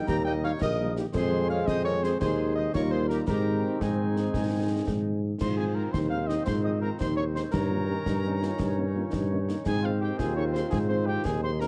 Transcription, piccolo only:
0.09 0.25 A#6 loud
0.27 0.33 G6 loud
0.44 0.50 F6 loud
0.62 0.95 D#6 loud
1.15 1.48 C6 loud
1.50 1.56 F6 loud
1.67 1.84 D#6 loud
1.85 1.91 C#6 loud
2.04 2.10 C6 loud
2.22 2.55 C6 loud
2.57 2.63 D#6 loud
2.74 2.93 C#6 loud
2.92 3.11 C6 loud
3.10 3.28 A#5 loud
3.29 3.78 A#5 loud
3.82 5.19 G#5 medium
5.41 5.57 C6 loud
5.59 5.65 G#5 medium
5.76 5.82 A#5 medium
5.93 5.99 C6 loud
6.12 6.18 F6 loud
6.28 6.34 D#6 medium
6.46 6.63 C6 loud
6.65 6.71 D#6 medium
6.82 6.99 A#5 medium
7.00 7.17 C6 loud
7.17 7.23 C#6 medium
7.36 7.42 C6 medium
7.53 9.44 A#5 loud
9.66 9.87 G#5 loud
9.85 10.02 F5 medium
10.03 10.19 G5 medium
10.20 10.26 G#5 loud
10.38 10.44 C#6 medium
10.55 10.72 C6 medium
10.72 10.78 G#5 loud
10.90 10.96 C6 medium
11.07 11.24 G5 medium
11.25 11.31 G#5 medium
11.43 11.61 C6 loud
11.60 11.68 A#5 medium

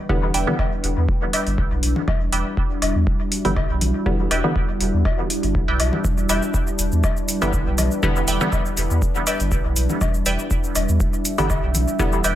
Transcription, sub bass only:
0.09 0.31 E1 medium
0.34 0.45 E1 loud
0.84 0.95 E1 loud
0.97 1.07 E2 medium
1.47 1.67 G1 loud
1.71 1.81 B1 medium
1.83 1.94 B1 medium
2.08 2.29 E1 loud
2.32 2.44 E1 loud
2.82 2.93 E1 loud
2.95 3.05 E2 medium
3.45 3.66 G1 loud
3.70 3.79 B1 medium
3.81 3.92 B1 medium
4.06 4.27 E1 medium
4.31 4.42 E1 loud
4.80 4.92 E1 medium
4.94 5.04 E2 medium
5.43 5.64 G1 loud
5.68 5.78 B1 medium
5.80 5.91 B1 medium
6.05 6.26 E1 loud
6.29 6.40 E1 loud
6.79 6.90 E1 medium
6.92 7.02 E2 medium
7.42 7.62 G1 loud
7.67 7.76 B1 medium
7.78 7.89 B1 medium
8.03 8.24 E1 loud
8.28 8.39 E1 loud
8.77 8.88 E1 loud
8.90 9.00 E2 medium
9.40 9.61 G1 loud
9.65 9.75 B1 medium
9.76 9.88 B1 medium
10.01 10.22 E1 loud
10.26 10.37 E1 loud
10.76 10.87 E1 loud
10.89 10.99 E2 loud
11.38 11.59 G1 loud
11.63 11.73 B1 medium
11.75 11.86 B1 medium
11.99 12.21 E1 loud
12.24 12.35 E1 loud

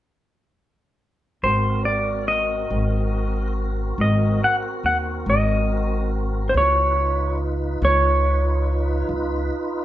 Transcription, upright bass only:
1.43 2.67 G#1 medium
2.71 3.94 G#1 medium
3.98 4.37 G#1 medium
4.84 5.23 D#2 medium
5.26 6.50 G#1 medium
6.54 7.78 C#2 medium
7.82 9.05 C#2 medium
9.09 9.48 C#2 medium

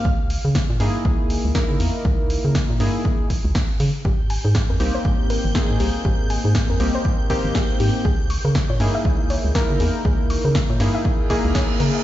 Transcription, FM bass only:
0.05 0.38 C#2 loud
0.45 0.61 C#3 loud
0.70 0.77 A#2 loud
0.80 0.91 G2 loud
1.05 1.38 C#2 medium
1.45 1.52 C#2 loud
1.70 1.77 C#3 medium
1.80 1.91 E2 medium
2.05 2.38 C#2 loud
2.45 2.61 C#3 loud
2.70 2.77 A#2 loud
2.80 2.90 G2 loud
3.45 3.52 C#2 loud
3.80 3.90 C#3 loud
4.05 4.38 G#1 loud
4.45 4.61 G#2 loud
4.70 4.77 F2 loud
4.80 4.91 C2 loud
5.05 5.38 G#1 medium
5.45 5.52 G#1 loud
5.70 5.77 G#2 medium
5.80 5.91 C2 medium
6.05 6.38 G#1 loud
6.45 6.61 G#2 loud
6.70 6.77 F2 loud
6.80 6.90 C2 loud
7.45 7.52 G#1 loud
7.80 7.91 G#2 medium
8.05 8.38 C#2 loud
8.45 8.61 C#3 loud
8.70 8.77 A#2 loud
8.80 8.90 G2 loud
9.05 9.38 C#2 medium
9.45 9.52 C#2 loud
9.70 9.77 C#3 medium
9.80 9.91 E2 medium
10.05 10.38 C#2 loud
10.45 10.61 C#3 loud
10.70 10.77 A#2 loud
10.80 10.90 G2 loud
11.45 11.52 C#2 loud
11.80 11.91 C#3 loud

